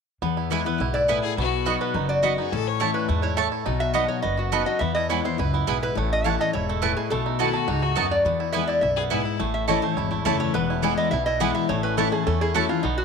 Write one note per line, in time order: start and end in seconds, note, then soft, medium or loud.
0.22 0.61 E2 medium
0.22 0.77 E2 medium
0.22 0.63 B3 medium
0.37 0.51 E4 medium
0.50 0.65 E3 medium
0.50 0.65 G#3 medium
0.50 0.60 B3 medium
0.50 0.65 B3 medium
0.50 0.60 E4 medium
0.50 0.80 E4 medium
0.50 0.64 E4 medium
0.50 0.61 B4 medium
0.50 0.61 G#5 medium
0.65 1.06 B3 medium
0.65 0.80 B3 soft
0.65 0.79 E4 soft
0.65 0.93 B4 medium
0.80 1.18 B1 medium
0.80 1.07 G#2 medium
0.80 0.94 E4 medium
0.94 1.22 E4 medium
0.94 1.08 D5 medium
1.08 1.36 A2 medium
1.08 1.18 B3 medium
1.08 1.37 B3 medium
1.08 1.18 E4 medium
1.08 1.18 B4 loud
1.08 1.23 E5 medium
1.08 1.18 G#5 loud
1.23 1.37 E4 medium
1.23 1.36 G#4 loud
1.37 1.76 B1 medium
1.37 1.92 B2 loud
1.37 1.78 B3 medium
1.37 1.71 F#4 loud
1.66 1.93 F#3 medium
1.66 1.75 B3 medium
1.66 1.93 B3 medium
1.66 1.94 D#4 medium
1.66 1.75 F#4 medium
1.66 2.06 F#4 medium
1.66 1.94 F#4 medium
1.66 1.75 D#5 medium
1.66 1.75 B5 medium
1.81 2.21 B3 medium
1.81 2.07 B4 medium
1.94 2.33 F#1 medium
1.94 2.49 F#2 medium
1.94 2.35 D#4 medium
2.09 2.49 F#4 medium
2.09 2.22 D5 medium
2.22 2.37 F#3 medium
2.22 2.32 B3 medium
2.22 2.37 B3 medium
2.22 2.52 B3 medium
2.22 2.38 D#4 medium
2.22 2.32 F#4 medium
2.22 2.37 F#4 medium
2.22 2.37 D#5 medium
2.22 2.32 D#5 loud
2.22 2.33 B5 loud
2.38 2.52 D#4 medium
2.38 2.52 D#4 soft
2.38 2.51 F#4 medium
2.38 2.54 G#4 medium
2.52 2.91 A1 medium
2.52 3.07 A2 medium
2.52 2.92 C#4 medium
2.52 2.68 A4 loud
2.67 2.88 C#5 medium
2.80 3.08 E3 medium
2.80 2.89 A3 medium
2.80 3.08 A3 medium
2.80 3.07 A3 medium
2.80 3.08 C#4 medium
2.80 2.90 E4 medium
2.80 3.09 E4 medium
2.80 2.90 C#5 medium
2.80 2.90 A5 loud
2.94 3.21 E4 medium
2.94 3.21 B4 medium
3.09 3.48 E2 medium
3.09 3.36 G#2 medium
3.09 3.49 A3 medium
3.22 3.51 E4 medium
3.22 3.37 C#5 medium
3.37 3.65 A2 medium
3.37 3.47 A3 medium
3.37 3.47 E4 medium
3.37 3.66 A4 medium
3.37 3.47 C#5 loud
3.37 3.46 E5 medium
3.37 3.47 A5 loud
3.52 3.66 E4 medium
3.66 4.05 B1 medium
3.66 4.21 B2 medium
3.66 4.06 D#4 medium
3.80 4.08 F#4 medium
3.80 3.94 E5 medium
3.94 4.22 F#3 medium
3.94 4.04 B3 medium
3.94 4.21 B3 medium
3.94 4.22 B3 medium
3.94 4.23 D#4 medium
3.94 4.04 F#4 medium
3.94 4.23 F#4 medium
3.94 4.04 D#5 medium
3.94 4.09 D#5 medium
3.94 4.04 B5 medium
4.08 4.36 F#4 soft
4.08 4.22 C#5 medium
4.22 4.63 F#1 medium
4.22 4.78 F#2 medium
4.22 4.64 B3 medium
4.22 4.37 D#5 medium
4.37 4.65 F#4 medium
4.37 4.52 F#4 medium
4.51 4.66 F#3 medium
4.51 4.61 B3 medium
4.51 4.67 B3 medium
4.51 4.67 D#4 medium
4.51 4.62 F#4 medium
4.51 4.65 F#4 medium
4.51 4.81 A4 medium
4.51 4.67 B4 medium
4.51 4.62 D#5 loud
4.51 4.62 B5 loud
4.66 4.81 D#4 soft
4.66 4.81 F#4 medium
4.66 4.80 F#4 medium
4.66 4.80 D#5 medium
4.79 5.20 E2 medium
4.79 5.36 E2 medium
4.79 5.08 B3 medium
4.79 4.94 E5 loud
4.95 5.24 E4 medium
4.95 5.09 D#5 loud
5.09 5.24 E3 medium
5.09 5.24 G#3 medium
5.09 5.50 B3 medium
5.09 5.19 B3 medium
5.09 5.25 B3 medium
5.09 5.19 E4 medium
5.09 5.23 E4 medium
5.09 5.20 B4 medium
5.09 5.24 C#5 medium
5.09 5.20 G#5 medium
5.24 5.39 B3 soft
5.24 5.38 E4 medium
5.24 5.39 C5 medium
5.38 5.63 C#2 medium
5.38 5.66 F#2 medium
5.38 5.66 E4 medium
5.38 5.53 B4 medium
5.54 5.93 B3 medium
5.54 5.68 E4 soft
5.67 5.92 B1 medium
5.67 5.95 G#2 medium
5.67 5.76 B3 medium
5.67 5.81 E4 medium
5.67 5.77 E4 medium
5.67 5.82 G#4 medium
5.67 5.77 B4 medium
5.67 5.77 G#5 loud
5.83 5.96 E4 medium
5.83 5.96 B4 medium
5.95 6.35 A1 medium
5.95 6.50 A2 medium
5.95 6.37 A3 medium
5.95 6.11 C#5 medium
6.13 6.27 D#5 medium
6.24 6.39 E3 medium
6.24 6.34 A3 medium
6.24 6.39 A3 medium
6.24 6.39 C#4 medium
6.24 6.34 E4 medium
6.24 6.54 E4 medium
6.24 6.37 E4 medium
6.24 6.34 C#5 medium
6.24 6.40 F#5 medium
6.24 6.34 A5 medium
6.39 6.54 C#4 soft
6.39 6.53 E4 medium
6.39 6.80 A4 soft
6.39 6.53 D#5 loud
6.53 6.93 E1 medium
6.53 6.81 G#2 medium
6.53 6.94 E4 medium
6.53 6.67 C#5 medium
6.69 7.09 A3 medium
6.69 6.82 A4 medium
6.82 7.10 A2 medium
6.82 6.91 A3 medium
6.82 7.11 C#4 medium
6.82 6.91 E4 medium
6.82 6.96 B4 medium
6.82 6.91 C#5 loud
6.82 6.92 A5 loud
6.97 7.11 E4 medium
6.97 7.10 G#4 medium
7.10 7.50 B1 medium
7.10 7.66 B2 loud
7.10 7.51 A3 medium
7.10 7.93 A4 medium
7.26 7.66 D#4 medium
7.39 7.67 D#3 medium
7.39 7.67 A3 medium
7.39 7.48 B3 medium
7.39 7.68 B3 medium
7.39 7.57 E4 medium
7.39 7.49 F#4 medium
7.39 7.67 F#4 medium
7.39 7.68 F#4 medium
7.39 7.49 D#5 medium
7.39 7.49 A5 loud
7.53 7.70 F#4 medium
7.53 7.94 A4 medium
7.68 7.93 C#2 medium
7.68 7.95 G#2 medium
7.68 7.84 D#4 loud
7.68 8.08 F#4 medium
7.82 8.22 A3 medium
7.82 8.04 F#4 medium
7.96 8.21 D#2 medium
7.96 8.24 F#2 medium
7.96 8.05 B3 medium
7.96 8.25 D#4 medium
7.96 8.06 F#4 medium
7.96 8.06 D#5 medium
7.96 8.06 A5 loud
8.11 8.25 F#4 medium
8.11 8.51 D5 medium
8.25 8.64 E2 medium
8.25 8.80 E2 loud
8.25 8.53 B3 medium
8.40 8.68 E4 medium
8.52 8.81 E3 medium
8.52 8.82 G#3 medium
8.52 8.63 B3 medium
8.52 8.94 B3 medium
8.52 8.82 B3 medium
8.52 8.63 E4 medium
8.52 8.83 E4 medium
8.52 8.63 B4 medium
8.52 8.67 E5 medium
8.52 8.63 G#5 medium
8.67 8.82 E4 medium
8.67 8.82 D5 medium
8.81 9.21 B1 medium
8.81 9.10 F#2 medium
8.81 9.10 E4 medium
8.81 8.90 E5 medium
8.96 9.37 B3 medium
8.96 9.03 G#4 loud
9.10 9.39 G#2 medium
9.10 9.20 B3 medium
9.10 9.20 E4 medium
9.10 9.38 E4 medium
9.10 9.24 E4 medium
9.10 9.20 B4 medium
9.10 9.21 G#5 loud
9.25 9.40 E4 medium
9.39 9.79 A1 medium
9.39 9.94 A2 loud
9.39 9.80 A3 medium
9.54 9.67 E5 medium
9.68 9.83 E3 medium
9.68 9.77 A3 medium
9.68 9.83 A3 medium
9.68 9.83 C#4 loud
9.68 9.78 E4 medium
9.68 9.81 E4 loud
9.68 10.09 A4 medium
9.68 9.78 C#5 medium
9.68 9.82 D#5 medium
9.68 9.78 A5 medium
9.82 10.10 A3 medium
9.82 9.98 C#4 soft
9.82 9.96 E4 medium
9.82 9.96 C5 medium
9.96 10.21 G#1 medium
9.96 10.52 E2 medium
9.96 10.25 E4 medium
9.96 10.11 C#5 loud
10.11 10.39 A3 medium
10.11 10.25 E4 medium
10.25 10.50 F#1 medium
10.25 10.53 E3 medium
10.25 10.35 A3 medium
10.25 10.53 A3 loud
10.25 10.54 C#4 medium
10.25 10.35 E4 loud
10.25 10.70 E4 medium
10.25 10.54 E4 medium
10.25 10.40 A4 medium
10.25 10.35 C#5 loud
10.25 10.35 A5 loud
10.40 10.55 A3 medium
10.40 10.54 C#5 loud
10.54 10.93 E1 medium
10.54 11.09 E2 loud
10.54 10.95 B3 medium
10.54 10.94 B4 medium
10.70 10.83 E4 medium
10.82 11.10 E3 medium
10.82 11.10 G#3 medium
10.82 10.92 B3 medium
10.82 11.11 B3 medium
10.82 10.92 E4 loud
10.82 11.12 E4 medium
10.82 11.11 E4 loud
10.82 10.93 B4 medium
10.82 10.93 G#5 medium
10.98 11.38 B3 medium
10.98 11.11 D#5 medium
11.11 11.51 B1 medium
11.11 11.66 B2 medium
11.11 11.26 E4 medium
11.11 11.25 E5 medium
11.26 11.54 E4 medium
11.26 11.40 D#5 medium
11.40 11.68 E3 medium
11.40 11.68 G#3 medium
11.40 11.50 B3 medium
11.40 11.69 B3 medium
11.40 11.68 B3 loud
11.40 11.50 E4 medium
11.40 11.69 E4 medium
11.40 11.50 B4 loud
11.40 11.54 F#5 medium
11.40 11.50 G#5 loud
11.55 11.69 E4 medium
11.55 11.69 E5 medium
11.69 12.08 A1 medium
11.69 12.24 A2 loud
11.69 12.10 A3 medium
11.69 11.83 C#5 medium
11.83 12.24 C#4 medium
11.83 11.97 B4 medium
11.97 12.11 E3 medium
11.97 12.07 A3 medium
11.97 12.12 A3 medium
11.97 12.12 C#4 medium
11.97 12.38 E4 medium
11.97 12.07 E4 loud
11.97 12.11 E4 loud
11.97 12.11 A4 medium
11.97 12.07 C#5 medium
11.97 12.07 A5 loud
12.12 12.52 A3 medium
12.12 12.27 C#4 soft
12.12 12.26 E4 medium
12.12 12.26 G#4 medium
12.27 12.81 E2 medium
12.27 12.65 E2 medium
12.27 12.67 C#4 medium
12.27 12.41 A4 medium
12.41 12.68 E4 medium
12.41 12.54 G#4 medium
12.54 12.69 E3 medium
12.54 12.64 A3 loud
12.54 12.69 A3 medium
12.54 12.69 C#4 medium
12.54 12.64 E4 medium
12.54 12.68 E4 medium
12.54 12.69 F#4 medium
12.54 12.84 A4 medium
12.54 12.64 C#5 loud
12.54 12.65 A5 loud
12.69 12.84 C#4 medium
12.69 12.83 E4 medium
12.69 12.84 E4 medium
12.69 12.83 F4 medium
12.83 13.05 B1 medium
12.83 13.05 B2 loud
12.83 13.05 B3 medium
12.83 12.97 D#4 medium
12.98 13.05 F#4 medium